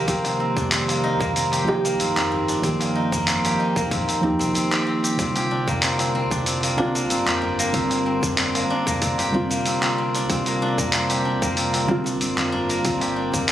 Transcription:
Already playing: D#3 F3 A#3 D#4 G4
0.06 C2 D#3 F3 A#3 C4 G4, kick, open hi-hat, cabasa
0.24 C4, open hi-hat, darbuka tek, cabasa
0.40 C4
0.57 D4, kick, darbuka dum, cabasa
0.72 C4, clap, open hi-hat, darbuka tek, cabasa
0.89 A#3, open hi-hat, darbuka tek, cabasa
1.04 D#4
1.20 C2 A#3, kick, darbuka dum, cabasa
1.36 C4, open hi-hat, cabasa
1.52 G4, open hi-hat, darbuka ka, cabasa
1.65 C2 F3 A#3 D#4, darbuka tek
1.69 G4
1.85 A#3, open hi-hat, darbuka ka, cabasa
1.99 G1 C4, open hi-hat, cabasa
2.17 C4, clap, open hi-hat, darbuka dum, cabasa
2.32 G1 C4
2.48 D4, open hi-hat, cabasa
2.61 D#3 F3 A#3 C4 G4, kick, open hi-hat, cabasa
2.80 A#3, open hi-hat, darbuka ka, darbuka tek, cabasa
2.95 D#4
3.12 A#3, kick, darbuka dum, cabasa
3.28 C4, clap, open hi-hat, darbuka tek, cabasa
3.45 G4, open hi-hat, darbuka tek, cabasa
3.60 D#4
3.76 C2 A#3, kick, darbuka ka, darbuka dum, cabasa
3.91 A#1 C4, kick, open hi-hat, cabasa
4.08 C4, open hi-hat, darbuka ka, cabasa
4.21 D#2 F3 A#3 C4 D#4, darbuka dum
4.25 G4
4.39 C2 C4, open hi-hat, darbuka ka, cabasa
4.55 C4, open hi-hat, cabasa
4.72 G4, clap, open hi-hat, darbuka ka, cabasa
4.87 C4
5.04 G4, open hi-hat, cabasa
5.17 C2 D3 G3 C4 F4, kick, open hi-hat, cabasa
5.36 G4, open hi-hat, darbuka tek, cabasa
5.51 D4
5.67 A#3, kick, darbuka dum, cabasa
5.82 C4, clap, open hi-hat, darbuka tek, cabasa
5.99 C4, open hi-hat, darbuka tek, cabasa
6.15 C4
6.31 C2 D4, kick, darbuka dum, cabasa
6.46 C4, open hi-hat, cabasa
6.61 A#3, open hi-hat, darbuka ka, cabasa
6.76 C2 D3 G3 C4 D4 F4, darbuka tek
6.95 A#3, open hi-hat, darbuka ka, cabasa
7.10 G1 C4, open hi-hat, cabasa
7.26 G4, clap, open hi-hat, darbuka dum, cabasa
7.42 G1 D4
7.59 A#3, open hi-hat, cabasa
7.72 D3 G3 C4, kick, open hi-hat, cabasa
7.76 F4
7.89 C4, open hi-hat, darbuka ka, darbuka tek, cabasa
8.06 C4
8.21 D4, kick, darbuka dum, cabasa
8.37 C4, clap, open hi-hat, darbuka tek, cabasa
8.55 A#3, open hi-hat, darbuka tek, cabasa
8.70 D4
8.86 C2 A#3, kick, darbuka ka, darbuka dum, cabasa
9.02 C4, kick, open hi-hat, cabasa
9.18 G1 G4, open hi-hat, darbuka ka, cabasa
9.32 C2 D3 G3 C4 D4, darbuka dum
9.36 F4
9.50 A#3, open hi-hat, darbuka ka, cabasa
9.66 C4, open hi-hat, cabasa
9.81 C4, clap, open hi-hat, darbuka ka, cabasa
9.98 C4
10.15 D4, open hi-hat, cabasa
10.28 C2 D3 G3 C4 F4, kick, open hi-hat, cabasa
10.46 A#3, open hi-hat, darbuka tek, cabasa
10.62 D4
10.78 A#3, kick, darbuka dum, cabasa
10.92 C4, clap, open hi-hat, darbuka tek, cabasa
11.10 G4, open hi-hat, darbuka tek, cabasa
11.25 D4
11.42 C2 A#3, kick, darbuka dum, cabasa
11.57 C4, open hi-hat, cabasa
11.73 C4, open hi-hat, darbuka ka, cabasa
11.87 C2 D3 G3 C4 F4, darbuka tek
12.04 D4, open hi-hat, darbuka ka, cabasa
12.21 G1 C4, open hi-hat, cabasa
12.37 A#3, clap, open hi-hat, darbuka dum, cabasa
12.52 G1 D4
12.69 A#3, open hi-hat, cabasa
12.83 D3 G3 C4 F4, kick, open hi-hat, cabasa
13.01 G4, open hi-hat, darbuka ka, darbuka tek, cabasa
13.16 D4
13.32 A#3, kick, open hi-hat, darbuka dum, cabasa
13.48 C4, clap, open hi-hat, darbuka tek

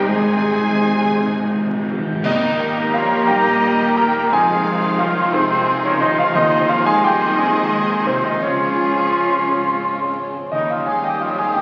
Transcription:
Already playing: G#1 C3 C4 D#4 G4
0.04 G#2 G#3 G#4 G#5
0.09 G#1 G#2 G#4 C5
0.20 G#2
0.27 G#2
0.35 G#2
0.43 G#2
0.51 G#2
0.59 G#2
0.66 G#2
0.73 G#2
0.81 G#2
0.89 G#2
0.96 G#2
1.04 G#2
1.11 G#2
1.16 G#2 C4 D#4 G#4
1.27 G#2
1.35 G#2
1.43 G#2
1.51 G#2
1.59 G#2
1.66 G#2
1.74 G#2
1.82 G#2
1.91 G#2
1.98 G#2
2.06 G#2
2.15 G#2
2.23 D#2 D#3 G3 A#3 D#4 G4 A#4 D#5 A#5, concert bass drum, crash
2.43 A#3
2.60 D#4
2.77 A#3
2.93 F3 G3 F4 C#5 F5
3.11 A#3
3.27 A#1 G3 A#3 D#4 G4 D#5 G5
3.46 A#3
3.62 G3
3.81 A#3
3.96 A#3 D#4 A#4 G5 A#5
4.15 A#3
4.29 F2 C3 F3 G#3 D#4 F4 G#4 F5 G#5 C6
4.47 C4
4.66 G#3
4.82 C4
4.98 F3 G#3 F4 C#5 F5
5.18 C4
5.32 C2 C3 G#3 C4 D#4 G#4 C5
5.51 C4
5.67 G#3
5.82 C#3 C4 C#4 A#4 C#5
5.99 D#3 G#3 D#4 C5 D#5
6.17 F3 C4 F4 C#5 F5
6.33 D#2 D#3 G#3 D#4 G#4 C5 D#5
6.49 C4
6.67 F3 G#3 F4 C#5 F5
6.84 G#3 C4 G#4 F5 G#5
7.01 G3 G#3 G4 D#5 G5
7.20 C4
7.35 D#2 G#3 C4 D#4 G#4 D#5 G#5
7.53 C4
7.69 G#3
7.88 C4
8.04 C3 G#3 C4 G#4 C5
8.22 D#3 C4 D#4 C5 D#5
8.39 C#2 C#3 F3 G#3 C#4 F4 G#4 C#5 C6
8.43 C#4
8.57 C4
8.75 C#4
8.93 C4
9.11 G#3
9.29 C4
9.46 G#1 C#4 F4 G#4
9.64 C4
9.82 G#3
10.00 C4
10.17 C#4
10.33 C4
10.50 D#2 D#3 G3 D#4 G4 A#4 D#5 D#6
10.69 F3 A#3 F4 C#5 F5
10.84 G#3 D#4 F5 G#5
10.89 G#4
11.02 G3 A#3 D#5 G5
11.06 G4
11.20 F3 G3 F4 C#5 F5
11.36 G#3 A#3 G#4 F5 G#5
11.54 A#1 G3 A#3 D#4 G4 D#5 G5

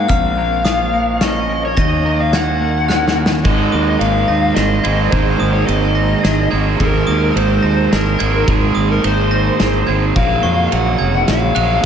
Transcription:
Already playing: A#3
0.07 A#1 A#2 F3 A#3 C#4 F5 F6, kick, closed hi-hat
0.38 A#3
0.65 F4 D#6, snare, closed hi-hat
0.94 A#3
1.21 C#4 D#5 C#6, snare, closed hi-hat
1.50 A#3
1.65 C#5
1.77 D#2 D#3 F#4 D#5 A#6, kick, closed hi-hat
2.05 A#3
2.20 F5
2.33 F#4 F#5 G#6, snare, closed hi-hat
2.61 A#3
2.88 C#4 F#6, snare
3.08 snare
3.17 A#3
3.26 snare
3.44 G#1 G#2 D#3 G#3 D#4 A#4 C5 D#5, kick, crash
3.72 D#2 A#3 D#6
3.99 G#1 A#3 F5, ride
4.28 D#2 D#4 A#6
4.55 G#1 G#4 D#5, snare, ride
4.84 G#1 G#2 D#3 G#3 C5 G#6, ride
5.11 G#1 G#2 D#3 G#3 C5, kick, ride
5.40 G#1 A#3 D#6
5.53 C#5
5.66 G#1 A#3 D#5, ride
5.95 D#4 A#6
6.23 G#1 G#4, snare, ride
6.50 G#1 G#2 D#3 G#3 C5 G#6
6.79 G#1 G#2 D#3 G#3 A#4, kick, ride
7.07 D#2 A#3 D#6
7.36 G#1 A#3 C5, ride
7.63 D#2 D#4 A#6
7.91 G#1 G#4 A#4, snare, ride
8.19 G#1 G#2 D#3 G#3 C5 G#6, ride
8.47 G#1 G#2 D#3 G#3 G#4, kick, ride
8.75 G#1 A#3 D#6
8.91 A#4
9.03 G#1 A#3 C5, ride
9.31 D#4 A#6
9.59 G#1 G#4, snare, ride
9.87 G#1 G#2 D#3 G#3 C5 G#6
10.15 A#1 F#2 A#2 C#3 F#3 A#3 G#4 C#5 F5, kick, ride
10.43 F2 F#3 C#6
10.71 A#1 A#3 F#5, ride
10.99 F1 C#4 G#6
11.28 A#1 F5, snare, ride
11.55 A#1 F#2 C#3 F#3 C#5 F#6, ride

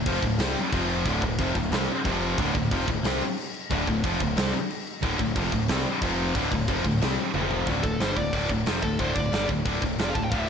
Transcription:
0.06 F1 F2 C3 F3, kick, crash
0.22 D1 D2 A2, kick, crash
0.38 C2 C3 G3 C4, snare, crash
0.56 crash
0.72 F1 F2 C3 F3, kick, crash
0.89 crash
1.06 D1 D2 A2 D3, kick, crash
1.22 D1 D2 A2, kick, crash
1.39 F1 F2 C3 F3, kick, crash
1.55 D1 D2 A2, kick, crash
1.72 C2 C3 G3 C4, snare, crash
1.88 crash
2.05 F1 F2 C3 F3, kick, crash
2.21 crash
2.38 D1 D2 A2 D3, kick, crash
2.55 D1 D2 A2, kick, crash
2.71 F1 F2 C3 F3, kick, crash
2.88 D1 D2 A2, kick, crash
3.04 C2 C3 G3 C4, snare, crash
3.21 crash
3.38 crash
3.54 crash
3.71 D1 D2 A2 D3, kick, crash
3.87 D1 D2 A2, kick, crash
4.04 F1 F2 C3 F3, kick, crash
4.20 D1 D2 A2, kick, crash
4.37 C2 C3 G3 C4, snare, crash
4.54 crash
4.70 crash
4.87 crash
5.03 D1 D2 A2 D3, kick, crash
5.19 D1 D2 A2, kick, crash
5.36 F1 F2 C3 F3, kick, crash
5.52 D1 D2 A2, kick, crash
5.68 C2 C3 G3 C4, snare, crash
5.86 crash
6.02 F1 F2 C3 F3, kick, crash
6.19 crash
6.35 D1 D2 A2 D3, kick, crash
6.51 D1 D2 A2, kick, crash
6.68 F1 F2 C3 F3, kick, crash
6.84 D1 D2 A2, kick, crash
7.01 C2 C3 G3 C4, snare, crash
7.18 crash
7.34 F1 F2 C3 F3, high tom
7.51 floor tom
7.67 D1 D2 A2 D3, kick, crash
7.83 D1 D2 A2 A4, kick, crash
8.00 G1 G2 D3 G3 C5, snare, crash
8.17 D1 D2 A2 D5, kick, crash
8.33 D1 D2 A2 D3, kick, crash
8.49 D1 D2 A2, kick, crash
8.66 F1 F2 C3 F3, snare, crash
8.83 D1 D2 A2 A4, kick, crash
8.99 D1 D2 A2 D3 C5, kick, crash
9.15 D1 D2 A2 D5, kick, crash
9.32 G1 G2 D3 G3, snare, crash
9.49 D1 D2 A2, kick, crash
9.65 D1 D2 A2 D3, kick, crash
9.82 D1 D2 A2, kick, crash
9.98 F1 F2 C3 F3, snare, crash
10.04 D5
10.09 F5
10.14 D1 D2 A2 A5, kick, crash
10.22 G5
10.31 D1 D2 A2 D3 F5, kick, crash
10.40 E5

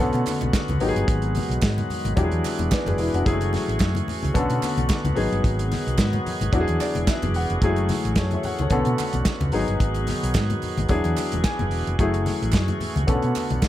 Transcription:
Already playing: A3 C#4 F#4
0.00 D3 B3 C#4 A4, low conga
0.13 B2, closed hi-hat, muted conga
0.26 clap, open hi-hat, high conga
0.41 B1, closed hi-hat, high conga
0.53 kick, snare, clap, closed hi-hat, muted conga
0.68 C#2, closed hi-hat, high conga, low conga
0.80 G#1 D#3 F#3 G#3 B3 D#4 G4, open hi-hat
0.88 G#4
0.95 G1, closed hi-hat
1.08 G#1, kick, closed hi-hat, muted conga
1.22 closed hi-hat
1.35 open hi-hat, high conga
1.49 B1, closed hi-hat
1.62 G#2, kick, snare, clap, closed hi-hat
1.78 closed hi-hat, muted conga, high conga
1.90 open hi-hat, low conga
2.05 G#1, closed hi-hat, high conga
2.16 E1 E3 F#3 B3 D4 E4 F#4 G4, kick, closed hi-hat, low conga
2.24 G#4
2.31 E2, closed hi-hat
2.45 clap, open hi-hat, high conga
2.59 E1, closed hi-hat, high conga
2.72 B4 D5, kick, snare, clap, closed hi-hat, muted conga
2.86 F#1 G#4 B4, closed hi-hat, muted conga, high conga, low conga
2.98 E1 E4 G#4, open hi-hat
3.14 F1 D4 F#4, closed hi-hat
3.25 F#1 F#3 G#3 A3 C#4 E4 G#4, kick, closed hi-hat, muted conga
3.32 A3
3.41 closed hi-hat, muted conga
3.53 snare, open hi-hat, high conga
3.68 A1, closed hi-hat
3.80 F#2, kick, snare, clap, closed hi-hat
3.95 closed hi-hat, high conga
4.08 open hi-hat, low conga
4.23 C#2, closed hi-hat, high conga
4.34 B1 D3 B3 C#4 A4, kick, closed hi-hat, muted conga, low conga
4.50 B2, closed hi-hat, muted conga
4.63 clap, open hi-hat, high conga
4.77 B1, closed hi-hat, high conga
4.90 kick, snare, clap, closed hi-hat
5.04 C#2, closed hi-hat, muted conga, high conga, low conga
5.15 G#1 D#3 F#3 B3 D#4 G#4, open hi-hat
5.32 G1, closed hi-hat
5.44 G#1, kick, closed hi-hat, muted conga
5.59 closed hi-hat, muted conga
5.72 snare, open hi-hat, high conga
5.87 B1, closed hi-hat
5.98 G#2, kick, snare, clap, closed hi-hat, muted conga
6.13 closed hi-hat, muted conga, high conga
6.26 open hi-hat, low conga
6.41 G#1, closed hi-hat, high conga
6.52 E1 E3 F#3 D4 E4 F#4, kick, closed hi-hat, low conga
6.60 G#4
6.68 E2, closed hi-hat, muted conga
6.80 D5, clap, open hi-hat, high conga
6.95 E1, closed hi-hat, high conga
7.07 E5, kick, snare, clap, closed hi-hat
7.22 F#1, closed hi-hat, muted conga, high conga, low conga
7.34 E1 F#5, open hi-hat
7.50 F1, closed hi-hat
7.62 F#1 F#3 G#3 A3 C#4 E4 G#4, kick, closed hi-hat
7.69 A3
7.76 closed hi-hat, muted conga
7.89 snare, open hi-hat, high conga
8.05 A1, closed hi-hat
8.16 F#2 A4 C#5, kick, snare, clap, closed hi-hat
8.31 C#5 E5, closed hi-hat, high conga
8.43 F#5, open hi-hat, low conga
8.59 C#2 A4 C#5, closed hi-hat, high conga
8.70 B1 D3 B3 C#4 A4, kick, closed hi-hat, muted conga, low conga
8.85 B2, closed hi-hat, muted conga
8.98 clap, open hi-hat, high conga
9.13 B1, closed hi-hat, high conga
9.25 kick, snare, clap, closed hi-hat, muted conga
9.40 C#2, closed hi-hat, muted conga, high conga, low conga
9.52 G#1 D#3 F#3 B3 D#4 G#4, open hi-hat
9.68 G1, closed hi-hat
9.80 G#1, kick, closed hi-hat, muted conga
9.94 closed hi-hat, muted conga
10.07 snare, open hi-hat, high conga
10.23 B1, closed hi-hat
10.34 G#2, kick, snare, clap, closed hi-hat, muted conga
10.50 closed hi-hat, high conga
10.62 open hi-hat, low conga
10.77 G#1, closed hi-hat, high conga
10.89 E1 E3 F#3 D4 E4 G#4, kick, closed hi-hat, low conga
11.04 E2, closed hi-hat, muted conga
11.17 clap, open hi-hat, high conga
11.32 E1, closed hi-hat, high conga
11.44 G#5, kick, snare, clap, closed hi-hat, muted conga
11.59 F#1, closed hi-hat, high conga, low conga
11.71 E1, open hi-hat
11.87 F1, closed hi-hat
11.99 F#1 F#3 A3 C#4 E4 G#4, kick, closed hi-hat
12.14 closed hi-hat, muted conga
12.26 snare, open hi-hat, high conga
12.42 A1, closed hi-hat
12.52 F#2, kick, snare, clap, closed hi-hat, muted conga
12.68 closed hi-hat, muted conga, high conga
12.80 open hi-hat, low conga
12.96 C#2, closed hi-hat, high conga
13.07 B1 D3 A3 B3 C#4 A4, kick, closed hi-hat, muted conga, low conga
13.22 B2, closed hi-hat
13.36 clap, open hi-hat, high conga
13.50 B1, closed hi-hat, high conga
13.62 kick, snare, clap, closed hi-hat

